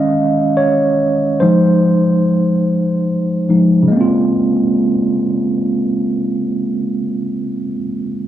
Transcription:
0.00 0.11 D#3 medium
0.00 0.12 G#3 medium
0.00 0.12 C#4 medium
0.00 0.59 D#5 medium
0.00 1.42 F5 loud
0.57 1.43 C#5 medium
1.40 1.96 F3 medium
1.40 1.96 G#3 medium
1.40 1.97 D#4 medium
1.40 3.03 C5 medium
3.49 3.87 F3 medium
3.49 3.86 G#3 soft
3.49 3.87 D#4 medium
3.83 7.59 C#3 medium
3.88 7.64 G#3 medium
3.88 7.68 A#3 medium
3.96 7.72 C4 medium
4.01 7.77 F4 loud

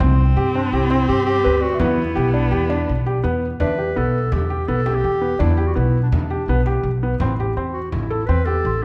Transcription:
0.00 0.32 C2 loud
0.00 1.82 C4 loud
0.00 0.21 C4 medium
0.00 frame drum medium
0.18 frame drum soft
0.36 0.68 G2 medium
0.36 0.47 G4 medium
0.54 0.66 C4 medium
0.54 0.73 D4 medium
0.54 frame drum soft
0.72 1.04 C2 medium
0.72 1.08 E4 medium
0.72 0.83 G4 medium
0.90 1.11 C4 medium
0.90 frame drum soft
1.08 1.41 G2 medium
1.08 1.25 G4 loud
1.08 frame drum soft
1.25 1.64 G4 loud
1.25 1.37 G4 medium
1.44 1.77 D2 medium
1.44 1.83 B4 medium
1.44 1.66 B4 medium
1.61 1.81 F#4 medium
1.61 1.96 D5 soft
1.75 2.08 E5 medium
1.79 2.13 E2 loud
1.79 2.01 B3 medium
1.79 3.42 B3 loud
1.79 3.24 E4 medium
1.79 frame drum medium
2.15 2.48 B1 medium
2.15 2.26 G4 medium
2.34 2.44 D4 medium
2.51 2.84 E2 medium
2.51 2.62 G4 medium
2.70 2.91 D4 medium
2.70 frame drum soft
2.89 3.21 B1 medium
3.06 3.17 G4 medium
3.06 frame drum soft
3.24 3.56 E2 loud
3.24 3.45 B3 medium
3.42 frame drum soft
3.60 3.92 E2 medium
3.60 3.71 D4 medium
3.60 3.99 B4 medium
3.60 4.00 E5 medium
3.60 frame drum medium
3.78 3.89 G4 medium
3.96 4.29 B1 medium
3.96 4.17 B3 medium
3.96 4.34 A4 medium
3.96 frame drum soft
4.32 4.65 E2 medium
4.32 4.70 G4 medium
4.32 frame drum medium
4.50 4.61 G4 medium
4.68 5.00 B1 medium
4.68 4.79 B3 medium
4.68 4.97 A4 medium
4.86 5.07 G4 medium
4.86 frame drum medium
4.95 5.43 G4 loud
5.04 5.36 E2 medium
5.04 5.44 G5 medium
5.21 5.32 B3 medium
5.39 5.72 E2 medium
5.39 5.50 D4 medium
5.39 5.69 E4 medium
5.39 frame drum medium
5.57 5.68 G4 medium
5.67 5.77 F#4 medium
5.75 6.08 B1 medium
5.75 5.97 B3 medium
5.75 6.02 E4 medium
5.75 frame drum soft
6.03 6.07 D4 medium
6.11 6.44 E2 medium
6.11 6.97 D4 medium
6.11 frame drum medium
6.30 6.41 G4 medium
6.48 6.80 B1 medium
6.48 6.59 B3 medium
6.66 6.87 G4 medium
6.66 frame drum medium
6.83 7.16 B1 medium
7.03 7.13 B3 medium
7.20 7.52 A1 medium
7.20 7.32 C4 medium
7.20 7.59 B5 soft
7.20 frame drum medium
7.40 7.50 G4 medium
7.56 7.89 E2 medium
7.56 7.78 C4 medium
7.56 frame drum soft
7.73 7.90 F#4 medium
7.91 8.25 A1 medium
7.91 8.28 E4 medium
7.91 frame drum medium
8.10 8.21 A4 medium
8.26 8.61 E2 medium
8.26 8.39 C4 medium
8.26 8.47 B4 medium
8.45 8.68 G4 medium
8.45 8.84 A4 medium
8.45 frame drum soft
8.65 8.85 A1 medium
8.65 8.85 C6 medium

